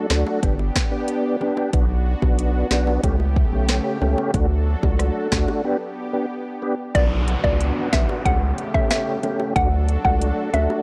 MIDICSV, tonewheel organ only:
0, 0, Header, 1, 2, 480
1, 0, Start_track
1, 0, Key_signature, 2, "minor"
1, 0, Tempo, 652174
1, 1275, Time_signature, 4, 2, 24, 8
1, 7965, End_track
2, 0, Start_track
2, 0, Title_t, "Tonewheel organ"
2, 0, Program_c, 0, 16
2, 73, Note_on_c, 0, 57, 79
2, 75, Note_on_c, 0, 62, 71
2, 76, Note_on_c, 0, 66, 86
2, 295, Note_off_c, 0, 57, 0
2, 296, Note_off_c, 0, 62, 0
2, 297, Note_off_c, 0, 66, 0
2, 312, Note_on_c, 0, 59, 98
2, 313, Note_on_c, 0, 62, 90
2, 316, Note_on_c, 0, 67, 110
2, 405, Note_off_c, 0, 59, 0
2, 406, Note_off_c, 0, 62, 0
2, 407, Note_off_c, 0, 67, 0
2, 672, Note_on_c, 0, 59, 80
2, 674, Note_on_c, 0, 62, 72
2, 677, Note_on_c, 0, 67, 84
2, 1005, Note_off_c, 0, 59, 0
2, 1006, Note_off_c, 0, 62, 0
2, 1007, Note_off_c, 0, 67, 0
2, 1032, Note_on_c, 0, 59, 82
2, 1034, Note_on_c, 0, 62, 73
2, 1036, Note_on_c, 0, 67, 92
2, 1255, Note_off_c, 0, 59, 0
2, 1256, Note_off_c, 0, 62, 0
2, 1256, Note_off_c, 0, 67, 0
2, 1272, Note_on_c, 0, 59, 92
2, 1274, Note_on_c, 0, 62, 81
2, 1276, Note_on_c, 0, 66, 99
2, 1365, Note_off_c, 0, 59, 0
2, 1366, Note_off_c, 0, 62, 0
2, 1367, Note_off_c, 0, 66, 0
2, 1634, Note_on_c, 0, 59, 74
2, 1635, Note_on_c, 0, 62, 68
2, 1638, Note_on_c, 0, 66, 84
2, 1966, Note_off_c, 0, 59, 0
2, 1967, Note_off_c, 0, 62, 0
2, 1968, Note_off_c, 0, 66, 0
2, 1993, Note_on_c, 0, 59, 78
2, 1996, Note_on_c, 0, 62, 72
2, 1998, Note_on_c, 0, 66, 84
2, 2215, Note_off_c, 0, 59, 0
2, 2217, Note_off_c, 0, 62, 0
2, 2217, Note_off_c, 0, 66, 0
2, 2233, Note_on_c, 0, 57, 95
2, 2234, Note_on_c, 0, 61, 91
2, 2237, Note_on_c, 0, 67, 107
2, 2325, Note_off_c, 0, 57, 0
2, 2326, Note_off_c, 0, 61, 0
2, 2327, Note_off_c, 0, 67, 0
2, 2593, Note_on_c, 0, 57, 78
2, 2595, Note_on_c, 0, 61, 72
2, 2597, Note_on_c, 0, 67, 88
2, 2925, Note_off_c, 0, 57, 0
2, 2927, Note_off_c, 0, 61, 0
2, 2927, Note_off_c, 0, 67, 0
2, 2951, Note_on_c, 0, 57, 84
2, 2954, Note_on_c, 0, 61, 75
2, 2955, Note_on_c, 0, 67, 90
2, 3174, Note_off_c, 0, 57, 0
2, 3175, Note_off_c, 0, 61, 0
2, 3176, Note_off_c, 0, 67, 0
2, 3193, Note_on_c, 0, 57, 92
2, 3195, Note_on_c, 0, 62, 86
2, 3198, Note_on_c, 0, 66, 105
2, 3286, Note_off_c, 0, 57, 0
2, 3287, Note_off_c, 0, 62, 0
2, 3288, Note_off_c, 0, 66, 0
2, 3552, Note_on_c, 0, 57, 75
2, 3554, Note_on_c, 0, 62, 68
2, 3557, Note_on_c, 0, 66, 83
2, 3885, Note_off_c, 0, 57, 0
2, 3886, Note_off_c, 0, 62, 0
2, 3887, Note_off_c, 0, 66, 0
2, 3912, Note_on_c, 0, 57, 79
2, 3914, Note_on_c, 0, 62, 71
2, 3917, Note_on_c, 0, 66, 85
2, 4135, Note_off_c, 0, 57, 0
2, 4136, Note_off_c, 0, 62, 0
2, 4137, Note_off_c, 0, 66, 0
2, 4151, Note_on_c, 0, 59, 96
2, 4154, Note_on_c, 0, 62, 89
2, 4157, Note_on_c, 0, 67, 107
2, 4245, Note_off_c, 0, 59, 0
2, 4246, Note_off_c, 0, 62, 0
2, 4247, Note_off_c, 0, 67, 0
2, 4512, Note_on_c, 0, 59, 80
2, 4514, Note_on_c, 0, 62, 74
2, 4516, Note_on_c, 0, 67, 88
2, 4605, Note_off_c, 0, 59, 0
2, 4606, Note_off_c, 0, 62, 0
2, 4607, Note_off_c, 0, 67, 0
2, 4873, Note_on_c, 0, 59, 82
2, 4876, Note_on_c, 0, 62, 74
2, 4878, Note_on_c, 0, 67, 89
2, 4966, Note_off_c, 0, 59, 0
2, 4967, Note_off_c, 0, 62, 0
2, 4968, Note_off_c, 0, 67, 0
2, 5112, Note_on_c, 0, 59, 93
2, 5114, Note_on_c, 0, 62, 88
2, 5117, Note_on_c, 0, 66, 99
2, 5205, Note_off_c, 0, 59, 0
2, 5206, Note_off_c, 0, 62, 0
2, 5207, Note_off_c, 0, 66, 0
2, 5472, Note_on_c, 0, 59, 75
2, 5475, Note_on_c, 0, 62, 71
2, 5478, Note_on_c, 0, 66, 78
2, 5805, Note_off_c, 0, 59, 0
2, 5807, Note_off_c, 0, 62, 0
2, 5808, Note_off_c, 0, 66, 0
2, 5832, Note_on_c, 0, 59, 80
2, 5834, Note_on_c, 0, 62, 73
2, 5837, Note_on_c, 0, 66, 84
2, 6055, Note_off_c, 0, 59, 0
2, 6056, Note_off_c, 0, 62, 0
2, 6057, Note_off_c, 0, 66, 0
2, 6072, Note_on_c, 0, 57, 97
2, 6075, Note_on_c, 0, 61, 88
2, 6077, Note_on_c, 0, 67, 104
2, 6165, Note_off_c, 0, 57, 0
2, 6167, Note_off_c, 0, 61, 0
2, 6167, Note_off_c, 0, 67, 0
2, 6434, Note_on_c, 0, 57, 77
2, 6436, Note_on_c, 0, 61, 72
2, 6438, Note_on_c, 0, 67, 87
2, 6766, Note_off_c, 0, 57, 0
2, 6767, Note_off_c, 0, 61, 0
2, 6768, Note_off_c, 0, 67, 0
2, 6794, Note_on_c, 0, 57, 79
2, 6796, Note_on_c, 0, 61, 75
2, 6798, Note_on_c, 0, 67, 93
2, 7015, Note_off_c, 0, 57, 0
2, 7016, Note_off_c, 0, 61, 0
2, 7017, Note_off_c, 0, 67, 0
2, 7034, Note_on_c, 0, 57, 97
2, 7036, Note_on_c, 0, 62, 88
2, 7039, Note_on_c, 0, 66, 105
2, 7126, Note_off_c, 0, 57, 0
2, 7127, Note_off_c, 0, 62, 0
2, 7129, Note_off_c, 0, 66, 0
2, 7393, Note_on_c, 0, 57, 78
2, 7396, Note_on_c, 0, 62, 66
2, 7398, Note_on_c, 0, 66, 84
2, 7726, Note_off_c, 0, 57, 0
2, 7727, Note_off_c, 0, 62, 0
2, 7728, Note_off_c, 0, 66, 0
2, 7753, Note_on_c, 0, 57, 82
2, 7756, Note_on_c, 0, 62, 75
2, 7757, Note_on_c, 0, 66, 89
2, 7965, Note_off_c, 0, 57, 0
2, 7965, Note_off_c, 0, 62, 0
2, 7965, Note_off_c, 0, 66, 0
2, 7965, End_track
0, 0, End_of_file